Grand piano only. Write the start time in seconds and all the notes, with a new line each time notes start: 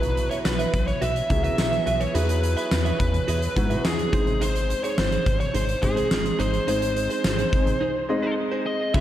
Already playing: F#3 B3 E4 B4
1.29 F#3 B3 E4 G#4
2.14 F#3 B3 E4 G#4
3.56 F#3 B3 E4 F#4
4.13 G#3 C4 D#4 C5
5.83 G#3 C4 D#4 C5
6.67 G#3 C4 D#4 C5
8.09 G#3 C4 D#4 D#5
8.94 G#3 C#4 E4 B4